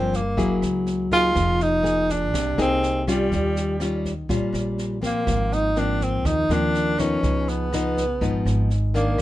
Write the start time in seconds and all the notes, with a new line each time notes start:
Already playing: G1 G2 F3 A#3 C4 C#4
0.13 A#3, kick, snare
0.37 F#1 F#3 A#3 E4 G#4, kick, snare
0.62 C#2, cross-stick, snare
0.87 snare
1.11 A#3 D#4 F4 G#4, kick, snare
1.35 F1 F3, kick, cross-stick, snare
1.60 D#4, snare
1.83 A#3 G#4, snare
2.09 D4, kick, snare
2.34 C2 C3, kick, cross-stick, snare
2.58 C2 A#3 C4 D#4 G#4, snare
2.83 snare
3.07 G3 C#4 F4, kick, cross-stick, snare
3.32 D#2 D#3, kick, snare
3.56 snare
3.80 G3 C#4 F4, cross-stick, snare
4.05 kick, snare
4.29 A#1 A#2 G3 C#4 F4, kick, snare
4.53 A#1, cross-stick, snare
4.78 snare
5.02 F3 A#3 C4, kick, snare
5.06 A#3
5.27 G#1 G#2, kick, cross-stick, snare
5.52 D#4, snare
5.76 F3 A#3 C4 D4, snare
6.01 C4, kick, snare
6.25 D#2 D#3 D#4, kick, cross-stick, snare
6.49 D#2 F3 A#3 C4 D4, snare
6.75 snare
6.98 F3 B3 C#4 D#4, kick, cross-stick, snare
7.23 C#2 C#3, kick, snare
7.48 B3, snare
7.73 F3 B3 D#4, cross-stick, snare
7.97 kick, snare
8.21 G#1 G#2 F3 B3 D#4, kick, snare
8.45 G#1, cross-stick, snare
8.70 snare
8.94 D#3 A#3 D4, kick, snare
9.18 kick, cross-stick, snare